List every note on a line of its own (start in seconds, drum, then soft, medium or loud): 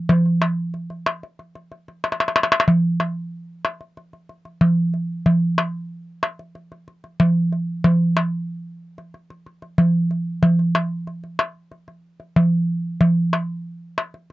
0.09 darbuka dum loud
0.26 darbuka ka soft
0.42 darbuka tek medium
0.74 darbuka ka soft
0.90 darbuka ka soft
1.06 darbuka tek medium
1.23 darbuka ka soft
1.39 darbuka ka soft
1.55 darbuka ka soft
1.72 darbuka ka soft
1.88 darbuka ka soft
2.04 darbuka tek medium
2.12 darbuka ka medium
2.20 darbuka tek medium
2.28 darbuka ka medium
2.36 darbuka tek medium
2.43 darbuka ka medium
2.52 darbuka tek medium
2.60 darbuka ka loud
2.68 darbuka dum medium
3.00 darbuka tek medium
3.65 darbuka tek medium
3.81 darbuka ka soft
3.97 darbuka ka soft
4.13 darbuka ka soft
4.29 darbuka ka soft
4.45 darbuka ka soft
4.61 darbuka dum medium
4.94 darbuka ka soft
5.26 darbuka dum medium
5.58 darbuka tek medium
6.23 darbuka tek medium
6.39 darbuka ka soft
6.55 darbuka ka soft
6.72 darbuka ka soft
6.88 darbuka ka soft
7.04 darbuka ka soft
7.20 darbuka dum medium
7.52 darbuka ka soft
7.84 darbuka dum loud
8.17 darbuka tek medium
8.98 darbuka ka soft
9.14 darbuka ka soft
9.30 darbuka ka soft
9.46 darbuka ka soft
9.62 darbuka ka soft
9.78 darbuka dum medium
10.11 darbuka ka soft
10.43 darbuka dum medium
10.59 darbuka ka soft
10.75 darbuka tek medium
11.07 darbuka ka soft
11.24 darbuka ka soft
11.39 darbuka tek medium
11.71 darbuka ka soft
11.88 darbuka ka soft
12.20 darbuka ka soft
12.36 darbuka dum medium
13.01 darbuka dum medium
13.33 darbuka tek medium
13.98 darbuka tek medium
14.14 darbuka ka soft